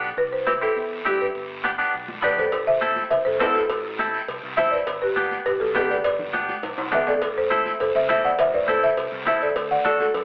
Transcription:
Already playing: B1
0.03 short guiro
0.17 C2 B4, long guiro
0.33 C5
0.47 C4 E4 G4 B4, high conga, short guiro
0.61 C4 E4 G4 A4, short guiro
0.76 E2, long guiro
1.05 G2 C4 E4 G4, high conga, short guiro
1.21 B4, short guiro
1.35 G1, long guiro
1.64 B3 D4 G4, high conga, short guiro
1.78 B3 D4 G4, short guiro
1.94 B1, long guiro
2.08 high conga
2.22 D2 B3 D4 G4 B4 D5, low conga, short guiro
2.38 A4 C5, low conga, short guiro
2.52 A1, cowbell, long guiro
2.67 C5 E5
2.81 C4 E4 A4, high conga, short guiro
2.96 high conga, short guiro
3.11 C2 C5 E5, cowbell, long guiro
3.25 C2 A4 C5
3.40 E2 C4 E4 A4 B4, high conga, low timbale, short guiro
3.55 F#4 A4, short guiro
3.70 A1, cowbell, long guiro
3.99 C4 E4 A4, high conga, short guiro
4.14 short guiro
4.28 C2, cowbell, long guiro
4.43 C2
4.57 A1 C4 E4 A4 C5 E5, high conga, low conga, short guiro
4.71 B4 D5, short guiro
4.87 G1, cowbell, long guiro
5.02 G4 B4
5.16 B3 D4 G4, high conga, short guiro
5.31 high conga, short guiro
5.46 B1 G4 B4, cowbell, long guiro
5.60 B1 F#4 A4
5.75 D2 B3 D4 G4 B4, high conga, low timbale, short guiro
5.90 B4 D5, short guiro
6.04 G1 B4 D5, cowbell, long guiro
6.19 low conga
6.33 B3 D4 G4, high conga, short guiro
6.49 high conga, short guiro
6.63 B1, cowbell, high timbale, long guiro
6.78 B1, high timbale
6.92 D2 B3 D4 G4 B4 E5, high conga, low conga, low timbale, short guiro
7.07 A4 D5, low timbale, short guiro
7.22 A1, cowbell, long guiro
7.38 A4 C5
7.50 C4 E4 A4, high conga, short guiro
7.66 high conga, short guiro
7.80 C2 A4 C5, cowbell, long guiro
7.95 C2 C5 E5
8.09 E2 C4 E4 A4 C5 E5, high conga, short guiro
8.24 D5 F#5, short guiro
8.39 A1 C5 E5, cowbell, long guiro
8.54 B4 D5, low conga
8.68 C4 E4 A4 C5, high conga, short guiro
8.83 C5 E5, short guiro
8.97 C2, cowbell, long guiro
9.12 C2
9.27 E2 C4 E4 A4 C5 E5, high conga, low conga, short guiro
9.41 A4 D5, short guiro
9.56 D2, cowbell, long guiro
9.71 D5 F#5
9.85 D4 F#4 A4 D5, high conga, short guiro
10.00 F#4 A4, high conga, short guiro
10.14 F#2, cowbell, long guiro

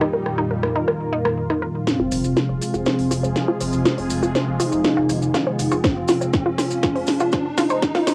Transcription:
Already playing: F2 A#2 D#3 G3 D#4 F4 G4
0.01 D#4, cross-stick
0.13 A#4
0.26 cross-stick
0.38 D#4
0.51 A#4
0.63 A#4, cross-stick
0.76 D#4
0.88 A#4, cross-stick
1.13 D#4
1.25 A#4, cross-stick
1.50 D#4, cross-stick
1.62 A#4
1.87 C3 F3 G#3 C4 F4 G#4, snare, riser, maracas
2.00 F1 F4
2.12 F1 C5, open hi-hat, maracas
2.24 F1, maracas
2.37 F4, snare, maracas
2.49 F1 C5
2.62 C4, open hi-hat, maracas
2.74 F1 F4, maracas
2.86 C5, snare, maracas
2.99 F1, open hi-hat
3.11 F1 F4, open hi-hat, maracas
3.23 F1 C5, maracas
3.36 snare, maracas
3.48 F4
3.61 F1 C4 C5, open hi-hat, maracas
3.73 F1, maracas
3.85 F4, snare, maracas
3.98 F1 C5, open hi-hat
4.10 F1, open hi-hat, maracas
4.23 F1 F4, maracas
4.35 C5, snare, maracas
4.47 F1
4.60 D#4 F4, open hi-hat, maracas
4.72 F1 C5, maracas
4.84 snare, maracas
4.97 F1 F4
5.09 F1 C5, open hi-hat, maracas
5.22 F1, maracas
5.34 F4, snare, maracas
5.47 C5
5.59 F1, open hi-hat, maracas
5.71 F1 F4, maracas
5.84 F4 C5, kick, snare, maracas
5.96 F1
6.08 F1 F4, snare, open hi-hat, maracas
6.21 F1 C5, maracas
6.33 kick, snare, maracas
6.46 F1 F4
6.58 F4 C5, snare, open hi-hat, maracas
6.70 F1, maracas
6.83 F4, kick, snare, maracas
6.95 F1 C5, open hi-hat
7.07 F1, snare, open hi-hat, maracas
7.20 F1 F4, maracas
7.32 C5, kick, snare, maracas
7.57 F1 D#4 F4, snare, open hi-hat, maracas
7.69 F1 C5, maracas
7.82 kick, snare, maracas
7.95 F1 F4, snare, open hi-hat
8.07 F1 C5, snare, open hi-hat, maracas

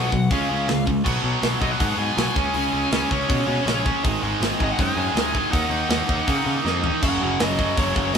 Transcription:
Already playing: B2 F#3 B3 F#5
0.12 B1 B2 F#3, kick
0.30 C#2 C#3 G#3 C#4 F5, kick, open hi-hat
0.49 C#2 C#3 G#3 C#4
0.68 C#2 C#3 G#3, snare, open hi-hat
0.86 C#2 C#3 G#3, kick
1.04 B1 B2 F#3 B3, kick, crash
1.22 B1 B2 F#3 B3
1.41 B1 B2 F#3 B3, snare, open hi-hat
1.59 B1 B2 F#3 B3 D#5, kick
1.71 F#5
1.79 G#2 B2 F#3 B3, kick, open hi-hat
1.97 G#2 B2 F#3 B3 G#5
2.16 B1 B2 F#3 B3, snare, open hi-hat
2.36 C#2 C#3 G#3 C#4, kick
2.54 C#2 C#3 G#3 C#4 G#5, open hi-hat
2.72 C#2 C#3 G#3 C#4
2.91 C#2 C#3 G#3 C#4, snare, open hi-hat
3.10 C#2 C#3 G#3 C#4 C#5, kick
3.28 B2 C#3 G#3 C#4, kick, open hi-hat
3.46 B2 C#3 G#3 C#4
3.65 A#1 C#3 G#3 C#4, snare, open hi-hat
3.84 C#3 G#3 C#4, kick
4.03 G#1 G#2 D#3 G#3, kick, open hi-hat
4.22 G#1 G#2 D#3 G#3
4.40 G#1 G#2 D#3 G#3, snare, open hi-hat
4.59 G#1 G#2 D#3 G#3, kick
4.64 D#5
4.72 F#5
4.78 F#2 G#2 D#3 G#3 G#5, kick, open hi-hat
4.96 F#2 G#2 D#3 G#3
5.14 D2 G#2 D#3 G#3, snare, open hi-hat
5.32 G#2 D#3 G#3, kick
5.50 D#2 D#3 A#3 D#4 F#5, kick, open hi-hat
5.69 D#2 D#3 A#3 D#4
5.89 D#2 D#3 A#3 D#4, snare, open hi-hat
6.07 D#2 D#3 A#3 D#4, kick
6.27 C#3 D#3 A#3 D#4, kick, open hi-hat
6.45 C#3 D#3 A#3 D#4
6.64 F2 D#3 A#3 D#4, snare
6.82 D#3 A#3 D#4, floor tom
7.02 F#1 F#2 C#3 F#3 F#5, kick, crash
7.21 F#1 F#2 C#3 F#3
7.40 F#1 F#2 C#3 F#3 D#5, snare, open hi-hat
7.58 F#2 C#3 F#3, kick
7.77 F#1 F#2 C#3 F#3 C#5, kick, open hi-hat
7.95 F#1 F#2 C#3 F#3, kick
8.13 F#2 C#3 F#3 D#5, open hi-hat

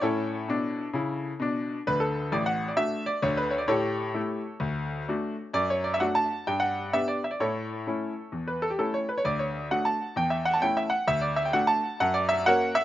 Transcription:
0.01 A2 C#4 E4 A4 C#5
0.48 B2 D4
0.93 C#3 E4
1.40 B2 D4
1.87 D2 D3 B4
2.00 A4
2.32 A1 A2 D5
2.46 F#5
2.68 D5
2.77 A3 D4 F#4 E5
3.06 D5
3.22 D2 D3 C#5
3.37 B4
3.50 C#5
3.58 D5
3.68 A2 G4 A4 C#5
4.14 A3 E4 G4
4.60 D2
5.08 A3 D4 F#4
5.54 F#2 D5
5.70 C#5
5.84 D5
5.94 E5
6.00 A3 D4 F#4 F#5
6.15 A5
6.47 G2 G5
6.60 F#5
6.93 B3 D4 G4 E5
7.08 D5
7.24 E5
7.31 D5
7.40 A2 E4 A4 C#5
7.87 A3 C#4 E4
8.32 E2
8.47 B4
8.62 A4
8.70 G4
8.79 A3 C#4 E4 A4
8.94 C#5
9.09 B4
9.18 C#5
9.25 D2 D5
9.39 C#5
9.71 A3 D4 F#4 F#5
9.85 A5
10.16 E2 G5
10.30 E5
10.45 F#5
10.54 A5
10.62 A3 C#4 E4 G5
10.77 E5
10.90 F#5
11.07 D2 E5
11.21 D5
11.36 E5
11.45 G5
11.53 A3 D4 F#4 F#5
11.67 A5
12.00 F#2 F#5
12.14 D5
12.29 E5
12.46 A#3 C#4 F#4 A#4 C#5 F#5
12.75 E5

